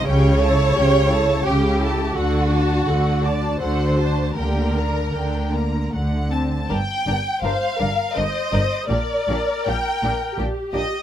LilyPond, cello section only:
\new Staff \with { instrumentName = "Cello section" } { \clef bass \time 3/4 \key g \minor \tempo 4 = 82 cis4 cis4 cis4 | d4 d4 d4 | d4 d4 d4 | g,8 g,8 g,8 g,8 g,8 g,8 |
bes,8 bes,8 bes,8 bes,8 bes,8 bes,8 | }